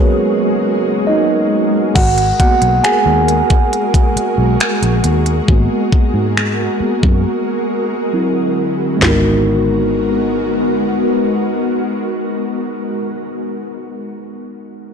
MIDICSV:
0, 0, Header, 1, 6, 480
1, 0, Start_track
1, 0, Key_signature, 5, "minor"
1, 0, Tempo, 882353
1, 1063, Time_signature, 4, 2, 24, 8
1, 8126, End_track
2, 0, Start_track
2, 0, Title_t, "Ambient pad"
2, 0, Program_c, 0, 92
2, 0, Note_on_c, 0, 56, 80
2, 0, Note_on_c, 0, 66, 72
2, 0, Note_on_c, 0, 68, 83
2, 0, Note_on_c, 0, 70, 84
2, 1041, Note_off_c, 0, 70, 0
2, 1044, Note_off_c, 0, 66, 0
2, 1044, Note_off_c, 0, 68, 0
2, 1045, Note_off_c, 0, 56, 0
2, 1062, Note_on_c, 0, 56, 77
2, 1062, Note_on_c, 0, 66, 70
2, 1062, Note_on_c, 0, 68, 87
2, 1062, Note_on_c, 0, 70, 70
2, 4401, Note_off_c, 0, 56, 0
2, 4401, Note_off_c, 0, 66, 0
2, 4401, Note_off_c, 0, 68, 0
2, 4401, Note_off_c, 0, 70, 0
2, 4906, Note_on_c, 0, 56, 73
2, 4906, Note_on_c, 0, 66, 68
2, 4906, Note_on_c, 0, 70, 67
2, 4907, Note_on_c, 0, 59, 78
2, 7051, Note_off_c, 0, 56, 0
2, 7051, Note_off_c, 0, 66, 0
2, 7051, Note_off_c, 0, 70, 0
2, 7052, Note_off_c, 0, 59, 0
2, 8126, End_track
3, 0, Start_track
3, 0, Title_t, "Tine electric piano"
3, 0, Program_c, 1, 4
3, 0, Control_c, 1, 64, 127
3, 0, Note_on_c, 1, 54, 63
3, 0, Note_on_c, 1, 56, 57
3, 0, Note_on_c, 1, 58, 65
3, 0, Note_on_c, 1, 59, 64
3, 0, Note_on_c, 1, 61, 74
3, 0, Note_on_c, 1, 66, 77
3, 0, Note_on_c, 1, 68, 77
3, 0, Note_on_c, 1, 70, 82
3, 0, Note_on_c, 1, 71, 82
3, 0, Note_on_c, 1, 73, 97
3, 582, Note_on_c, 1, 75, 82
3, 594, Note_on_c, 1, 63, 70
3, 800, Note_off_c, 1, 68, 0
3, 807, Note_off_c, 1, 56, 0
3, 1047, Note_off_c, 1, 63, 0
3, 1062, Note_on_c, 1, 78, 96
3, 1070, Control_c, 1, 64, 0
3, 1071, Note_off_c, 1, 54, 0
3, 1071, Note_off_c, 1, 58, 0
3, 1071, Note_off_c, 1, 61, 0
3, 1071, Note_off_c, 1, 70, 0
3, 1071, Note_off_c, 1, 71, 0
3, 1071, Note_off_c, 1, 73, 0
3, 1072, Note_off_c, 1, 59, 0
3, 1074, Note_off_c, 1, 66, 0
3, 1074, Note_on_c, 1, 66, 76
3, 1077, Note_off_c, 1, 75, 0
3, 1165, Control_c, 1, 64, 127
3, 1292, Note_off_c, 1, 66, 0
3, 1299, Note_off_c, 1, 78, 0
3, 1305, Note_on_c, 1, 78, 90
3, 1308, Note_on_c, 1, 58, 57
3, 1312, Note_on_c, 1, 59, 49
3, 1316, Note_on_c, 1, 66, 68
3, 1527, Note_off_c, 1, 78, 0
3, 1533, Note_off_c, 1, 66, 0
3, 1543, Note_on_c, 1, 80, 91
3, 1555, Note_on_c, 1, 68, 72
3, 1625, Note_off_c, 1, 58, 0
3, 1627, Note_off_c, 1, 59, 0
3, 2984, Note_on_c, 1, 58, 54
3, 2987, Note_on_c, 1, 59, 48
3, 2990, Note_on_c, 1, 66, 62
3, 3303, Note_off_c, 1, 58, 0
3, 3305, Note_off_c, 1, 59, 0
3, 3306, Note_off_c, 1, 66, 0
3, 3705, Note_on_c, 1, 58, 44
3, 3707, Note_on_c, 1, 59, 41
3, 3709, Note_on_c, 1, 66, 46
3, 3922, Note_off_c, 1, 58, 0
3, 3923, Note_off_c, 1, 59, 0
3, 3924, Note_off_c, 1, 66, 0
3, 4401, Note_off_c, 1, 80, 0
3, 4407, Note_off_c, 1, 68, 0
3, 4424, Note_on_c, 1, 54, 54
3, 4427, Note_on_c, 1, 60, 52
3, 4430, Control_c, 1, 64, 0
3, 4430, Note_on_c, 1, 64, 63
3, 4520, Control_c, 1, 64, 127
3, 4880, Note_on_c, 1, 56, 75
3, 4882, Note_off_c, 1, 54, 0
3, 4883, Note_off_c, 1, 60, 0
3, 4885, Note_off_c, 1, 64, 0
3, 4893, Note_on_c, 1, 59, 69
3, 4908, Note_on_c, 1, 63, 72
3, 4909, Control_c, 1, 64, 0
3, 4922, Note_on_c, 1, 66, 69
3, 4936, Note_on_c, 1, 70, 83
3, 4991, Control_c, 1, 64, 127
3, 7025, Note_off_c, 1, 56, 0
3, 7038, Note_off_c, 1, 59, 0
3, 7053, Note_off_c, 1, 63, 0
3, 7067, Note_off_c, 1, 66, 0
3, 7081, Note_off_c, 1, 70, 0
3, 8126, End_track
4, 0, Start_track
4, 0, Title_t, "Fingered electric bass"
4, 0, Program_c, 2, 33
4, 1064, Note_on_c, 2, 32, 105
4, 1257, Note_off_c, 2, 32, 0
4, 1424, Note_on_c, 2, 35, 78
4, 1520, Note_off_c, 2, 35, 0
4, 1663, Note_on_c, 2, 39, 95
4, 1856, Note_off_c, 2, 39, 0
4, 2382, Note_on_c, 2, 35, 76
4, 2479, Note_off_c, 2, 35, 0
4, 2624, Note_on_c, 2, 34, 77
4, 2720, Note_off_c, 2, 34, 0
4, 2742, Note_on_c, 2, 39, 87
4, 2936, Note_off_c, 2, 39, 0
4, 2983, Note_on_c, 2, 32, 102
4, 3080, Note_off_c, 2, 32, 0
4, 3340, Note_on_c, 2, 44, 85
4, 3631, Note_off_c, 2, 44, 0
4, 3825, Note_on_c, 2, 42, 93
4, 3938, Note_off_c, 2, 42, 0
4, 4901, Note_on_c, 2, 32, 96
4, 7046, Note_off_c, 2, 32, 0
4, 8126, End_track
5, 0, Start_track
5, 0, Title_t, "Muted fingered electric bass strokes"
5, 2264, Note_on_c, 9, 29, 45
5, 2318, Note_off_c, 9, 29, 0
5, 3223, Note_on_c, 9, 29, 43
5, 3277, Note_off_c, 9, 29, 0
5, 3701, Note_on_c, 9, 29, 43
5, 3755, Note_off_c, 9, 29, 0
5, 8126, End_track
6, 0, Start_track
6, 0, Title_t, "Drums"
6, 1064, Note_on_c, 9, 36, 100
6, 1064, Note_on_c, 9, 42, 64
6, 1064, Note_on_c, 9, 49, 89
6, 1118, Note_off_c, 9, 36, 0
6, 1118, Note_off_c, 9, 49, 0
6, 1119, Note_off_c, 9, 42, 0
6, 1184, Note_on_c, 9, 42, 51
6, 1239, Note_off_c, 9, 42, 0
6, 1304, Note_on_c, 9, 36, 90
6, 1304, Note_on_c, 9, 42, 64
6, 1358, Note_off_c, 9, 36, 0
6, 1358, Note_off_c, 9, 42, 0
6, 1424, Note_on_c, 9, 42, 53
6, 1478, Note_off_c, 9, 42, 0
6, 1547, Note_on_c, 9, 42, 66
6, 1549, Note_on_c, 9, 26, 93
6, 1601, Note_off_c, 9, 42, 0
6, 1603, Note_off_c, 9, 26, 0
6, 1787, Note_on_c, 9, 42, 62
6, 1841, Note_off_c, 9, 42, 0
6, 1904, Note_on_c, 9, 42, 42
6, 1906, Note_on_c, 9, 36, 84
6, 1959, Note_off_c, 9, 42, 0
6, 1960, Note_off_c, 9, 36, 0
6, 2029, Note_on_c, 9, 42, 60
6, 2083, Note_off_c, 9, 42, 0
6, 2144, Note_on_c, 9, 36, 90
6, 2147, Note_on_c, 9, 42, 49
6, 2198, Note_off_c, 9, 36, 0
6, 2201, Note_off_c, 9, 42, 0
6, 2268, Note_on_c, 9, 42, 72
6, 2323, Note_off_c, 9, 42, 0
6, 2505, Note_on_c, 9, 42, 64
6, 2508, Note_on_c, 9, 26, 115
6, 2559, Note_off_c, 9, 42, 0
6, 2562, Note_off_c, 9, 26, 0
6, 2625, Note_on_c, 9, 42, 51
6, 2680, Note_off_c, 9, 42, 0
6, 2741, Note_on_c, 9, 42, 60
6, 2795, Note_off_c, 9, 42, 0
6, 2862, Note_on_c, 9, 42, 47
6, 2916, Note_off_c, 9, 42, 0
6, 2983, Note_on_c, 9, 36, 98
6, 3037, Note_off_c, 9, 36, 0
6, 3223, Note_on_c, 9, 36, 86
6, 3277, Note_off_c, 9, 36, 0
6, 3468, Note_on_c, 9, 26, 96
6, 3522, Note_off_c, 9, 26, 0
6, 3825, Note_on_c, 9, 36, 81
6, 3880, Note_off_c, 9, 36, 0
6, 4904, Note_on_c, 9, 43, 87
6, 4907, Note_on_c, 9, 38, 91
6, 4958, Note_off_c, 9, 43, 0
6, 4962, Note_off_c, 9, 38, 0
6, 8126, End_track
0, 0, End_of_file